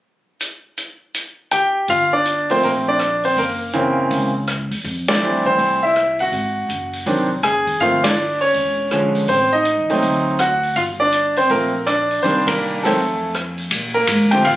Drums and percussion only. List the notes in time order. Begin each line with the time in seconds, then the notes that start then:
0.41 closed hi-hat
0.78 closed hi-hat
1.14 closed hi-hat
1.51 closed hi-hat
1.88 kick, open hi-hat
2.25 closed hi-hat
2.50 open hi-hat
2.63 kick, open hi-hat
2.99 cross-stick, closed hi-hat
3.24 open hi-hat
3.37 kick, open hi-hat
3.73 closed hi-hat
4.11 kick, open hi-hat
4.47 cross-stick, closed hi-hat
4.71 open hi-hat
4.84 kick, open hi-hat
5.08 snare, ride
5.46 kick
5.59 kick, open hi-hat
5.96 cross-stick, closed hi-hat
6.19 open hi-hat
6.33 kick, open hi-hat
6.70 closed hi-hat
6.93 open hi-hat
7.06 kick, open hi-hat
7.43 cross-stick, closed hi-hat
7.67 kick, open hi-hat
7.80 kick, open hi-hat
8.04 snare, ride
8.41 open hi-hat
8.54 kick, open hi-hat
8.91 cross-stick, closed hi-hat
9.15 open hi-hat
9.28 kick, open hi-hat
9.65 closed hi-hat
9.90 open hi-hat
10.02 kick, open hi-hat
10.39 cross-stick, closed hi-hat
10.63 open hi-hat
10.76 kick, open hi-hat
11.12 closed hi-hat
11.36 open hi-hat
11.50 kick, open hi-hat
11.87 cross-stick, closed hi-hat
12.11 open hi-hat
12.24 kick, open hi-hat
12.48 kick, ride
12.84 snare, open hi-hat
12.98 kick, open hi-hat
13.34 cross-stick, closed hi-hat
13.58 open hi-hat
13.71 kick, ride
14.07 kick, hi-hat pedal, ride
14.32 ride
14.45 kick, ride